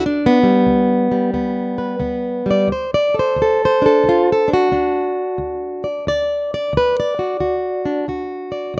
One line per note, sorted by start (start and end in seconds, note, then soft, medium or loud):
0.00 0.63 D2 medium
0.06 0.43 D4 medium
0.26 1.33 B3 loud
0.43 1.10 G3 soft
0.67 1.30 D2 medium
1.12 2.45 G3 soft
1.34 1.97 D2 medium
1.34 1.98 B3 soft
1.78 2.47 B4 soft
2.00 2.64 D2 medium
2.00 2.68 B3 soft
2.46 2.70 G3 soft
2.51 2.72 D5 medium
2.68 3.32 D2 medium
2.72 2.94 C5 medium
2.94 3.16 D5 medium
3.14 3.41 A4 soft
3.19 3.62 C5 medium
3.36 3.99 D2 medium
3.42 3.84 A4 medium
3.65 4.52 C5 medium
3.82 4.08 D4 soft
3.82 4.29 A4 medium
4.04 4.67 D2 medium
4.09 4.29 F4 medium
4.32 4.52 A4 medium
4.48 4.72 D4 soft
4.53 5.86 F#4 medium
4.72 5.34 D2 medium
4.72 7.85 D4 soft
5.38 6.01 D2 medium
5.84 6.08 D5 soft
6.07 6.69 D2 medium
6.07 6.52 D5 medium
6.54 6.75 D5 medium
6.73 7.36 D2 medium
6.77 6.98 B4 medium
7.00 8.02 D5 medium
7.19 7.39 F#4 soft
7.40 8.03 D2 medium
7.40 8.05 F#4 soft
7.85 8.06 D4 soft
8.08 8.71 D2 medium
8.08 8.79 F#4 soft
8.52 8.75 D5 soft
8.74 8.79 D2 medium